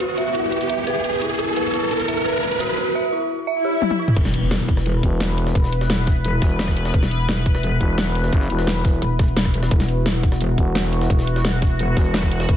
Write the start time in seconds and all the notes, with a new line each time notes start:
Already playing: B3 B4, riser
0.00 F#4, closed hi-hat
0.18 E5, closed hi-hat
0.35 E4, closed hi-hat
0.52 closed hi-hat
0.61 closed hi-hat
0.69 E5, closed hi-hat
0.87 B4, closed hi-hat
1.04 closed hi-hat
1.13 closed hi-hat
1.22 E4, closed hi-hat
1.39 E4, closed hi-hat
1.56 B4, closed hi-hat
1.74 E4, closed hi-hat
1.91 E4, closed hi-hat
2.00 closed hi-hat
2.08 E5, closed hi-hat
2.26 B4, closed hi-hat
2.43 closed hi-hat
2.52 closed hi-hat
2.60 F#4, closed hi-hat
2.78 F#4
2.95 E5
3.13 E4
3.47 E5, swell
3.65 G4
3.82 high tom
3.91 high tom
3.99 E4
4.08 mid tom
4.16 E1 B3 E4 B4, kick, closed hi-hat, crash, impact
4.25 snare
4.34 closed hi-hat
4.51 snare, closed hi-hat
4.60 closed hi-hat
4.68 kick, closed hi-hat
4.77 cross-stick, snare
4.86 closed hi-hat
5.03 E1, kick, closed hi-hat
5.20 snare, closed hi-hat
5.38 closed hi-hat, open hi-hat
5.47 snare
5.55 E1, kick, closed hi-hat
5.64 snare
5.72 closed hi-hat
5.81 snare
5.90 snare, closed hi-hat
5.99 closed hi-hat
6.07 kick, snare, closed hi-hat
6.25 closed hi-hat
6.42 E1, kick, snare, closed hi-hat
6.51 closed hi-hat
6.59 snare, closed hi-hat
6.68 kick, cross-stick, snare
6.77 closed hi-hat
6.85 snare
6.94 E1, kick, closed hi-hat
7.03 snare
7.11 closed hi-hat
7.29 snare, closed hi-hat
7.37 closed hi-hat
7.46 kick, closed hi-hat
7.55 cross-stick, snare
7.63 closed hi-hat
7.81 E1, kick, closed hi-hat
7.98 snare, closed hi-hat
8.15 closed hi-hat, open hi-hat
8.24 snare
8.33 F#1, kick, closed hi-hat
8.41 snare
8.50 E1, closed hi-hat
8.59 snare
8.67 snare, closed hi-hat
8.76 closed hi-hat
8.85 kick, snare, closed hi-hat
9.02 E1, closed hi-hat
9.19 kick, snare, closed hi-hat
9.28 closed hi-hat
9.37 snare, closed hi-hat
9.45 kick, cross-stick
9.54 closed hi-hat
9.63 snare
9.71 E1 F#4, kick, closed hi-hat
9.80 snare
9.89 closed hi-hat
10.06 snare, closed hi-hat
10.15 closed hi-hat
10.23 kick, closed hi-hat
10.32 cross-stick, snare
10.41 closed hi-hat
10.58 E1, kick, closed hi-hat
10.75 snare, closed hi-hat
10.93 closed hi-hat, open hi-hat
11.01 snare
11.10 E1, kick, closed hi-hat
11.19 snare
11.27 closed hi-hat
11.36 snare
11.45 snare, closed hi-hat
11.53 closed hi-hat
11.62 kick, snare, closed hi-hat
11.79 closed hi-hat
11.97 E1, kick, snare, closed hi-hat
12.05 closed hi-hat
12.14 snare, closed hi-hat
12.23 kick, cross-stick, snare
12.31 closed hi-hat
12.40 snare
12.49 E1, kick, closed hi-hat